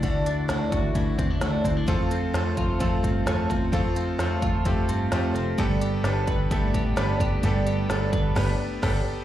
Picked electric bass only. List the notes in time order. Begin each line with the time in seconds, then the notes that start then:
0.03 D2
0.50 D2
0.72 D2
0.95 D2
1.18 E2
1.42 D2
1.65 D2
1.88 F2
2.34 F2
2.57 F2
2.81 F2
3.04 G2
3.26 F2
3.50 E2
3.73 F2
4.19 F2
4.42 F2
4.65 F2
4.89 G2
5.12 F2
5.34 F1
5.58 G1
6.04 G1
6.28 G1
6.51 G1
6.74 A1
6.97 G1
7.20 F#1
7.43 G1
7.90 G1
8.13 G1
8.36 G1
8.83 G1